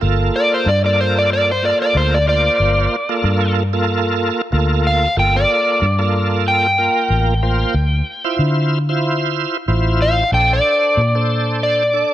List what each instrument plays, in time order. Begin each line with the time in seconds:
0.01 fingered electric bass G1, tonewheel organ A#3 F4 A4
0.36 electric slide guitar D5
0.54 electric slide guitar C5
0.66 fingered electric bass G2, electric slide guitar D5
0.84 tonewheel organ A#3 F4 A4, electric slide guitar D5
1.01 electric slide guitar C5
1.19 electric slide guitar D5
1.33 electric slide guitar D5
1.51 electric slide guitar C5
1.63 tonewheel organ A#3 F4 A4, electric slide guitar D5
1.82 electric slide guitar D5
1.95 fingered electric bass D2, electric slide guitar C5
2.14 electric slide guitar D5
2.27 tonewheel organ A#3 F4 C5, electric slide guitar D5
2.60 fingered electric bass G1
3.09 tonewheel organ A#3 F4 A4
3.24 fingered electric bass G2
3.73 tonewheel organ A#3 F4 A4
4.52 fingered electric bass D2, tonewheel organ A#3 F4 A4
4.87 electric slide guitar F5
5.17 fingered electric bass G1, tonewheel organ A#3 F4 A4, electric slide guitar G5
5.36 electric slide guitar D5
5.82 fingered electric bass G2
5.99 tonewheel organ A#3 F4 A4
6.48 electric slide guitar G5
6.78 tonewheel organ A#3 F4 A#4
7.10 fingered electric bass A1
7.43 tonewheel organ A#3 F4 C5
7.74 fingered electric bass D2
8.24 tonewheel organ E4 F4 C5
8.39 fingered electric bass D3
8.89 tonewheel organ E4 F4 C5
9.68 fingered electric bass A1, tonewheel organ E4 F4 C5
10.02 electric slide guitar F5
10.32 fingered electric bass A#1, tonewheel organ D4 A4 C5, electric slide guitar G5
10.53 electric slide guitar D5
10.97 fingered electric bass A#2
11.15 tonewheel organ D4 A4 C5
11.63 electric slide guitar D5
11.93 tonewheel organ D4 A4 D5